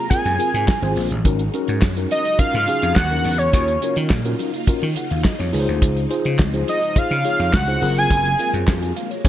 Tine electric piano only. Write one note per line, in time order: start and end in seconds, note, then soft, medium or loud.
0.10 0.27 C4 medium
0.10 0.27 F4 medium
0.10 0.27 G#4 medium
0.10 0.27 A#4 medium
0.39 0.64 C4 medium
0.39 0.64 F4 medium
0.39 0.64 G#4 medium
0.39 0.64 A#4 medium
0.82 1.07 C4 medium
0.82 1.07 F4 medium
0.82 1.07 G#4 medium
0.82 1.07 C5 loud
1.25 1.42 C#4 medium
1.25 1.42 D#4 medium
1.25 1.42 F#4 medium
1.25 1.42 A#4 medium
1.54 1.79 C#4 medium
1.54 1.79 D#4 medium
1.54 1.79 F#4 medium
1.54 1.79 A#4 loud
1.97 2.22 C#4 medium
1.97 2.22 D#4 medium
1.97 2.22 F#4 medium
1.97 2.22 A#4 medium
2.39 2.56 C#4 medium
2.39 2.56 D#4 medium
2.39 2.56 F#4 medium
2.39 2.56 A#4 medium
2.67 2.93 C#4 medium
2.67 2.93 D#4 medium
2.67 2.93 F#4 medium
2.67 2.93 G#4 medium
3.11 3.35 C#4 medium
3.11 3.36 D#4 medium
3.11 3.36 F#4 medium
3.11 3.36 A#4 medium
3.54 3.70 C#4 medium
3.54 3.70 F4 medium
3.54 3.71 F#4 medium
3.54 3.71 A#4 medium
3.83 4.07 C#4 medium
3.83 4.07 F4 medium
3.83 4.08 F#4 medium
3.83 4.08 A#4 medium
4.25 4.50 C#4 medium
4.25 4.50 F4 medium
4.25 4.50 F#4 medium
4.25 4.50 A#4 loud
4.68 4.84 C#4 medium
4.68 4.84 F4 medium
4.68 4.85 F#4 medium
4.68 4.85 A#4 loud
4.97 5.10 F#5 medium
5.11 5.24 F5 medium
5.24 5.38 D#5 medium
5.39 5.66 C#5 medium
5.53 5.99 D#4 loud
5.53 5.99 F4 medium
5.53 5.99 G#4 medium
5.53 5.60 B4 medium
5.60 6.02 C5 loud
6.10 6.35 D#4 medium
6.10 6.35 F4 medium
6.10 6.35 G#4 medium
6.10 6.36 C5 loud
6.53 6.78 D#4 medium
6.53 6.78 F4 medium
6.53 6.79 G#4 medium
6.53 6.79 C5 medium
6.95 7.12 D#4 medium
6.95 7.13 F4 medium
6.95 7.13 G#4 medium
6.95 7.13 C5 medium
7.24 7.49 D#4 medium
7.24 7.50 F4 medium
7.24 7.50 G#4 medium
7.24 7.50 C#5 medium
7.67 7.82 D#4 medium
7.67 7.80 F4 medium
7.67 7.80 G#4 medium
7.67 7.82 C5 medium
7.81 8.27 C4 medium
7.81 8.28 F4 medium
7.81 8.28 G#4 medium
7.81 8.28 A#4 loud
8.39 8.64 C4 medium
8.39 8.64 F4 medium
8.39 8.64 G#4 medium
8.39 8.64 A#4 medium
8.82 8.96 G#5 medium
8.96 9.10 F5 medium
9.11 9.29 C#5 medium
9.24 9.29 C#4 loud
9.24 9.29 D#4 medium
9.24 9.29 G#4 medium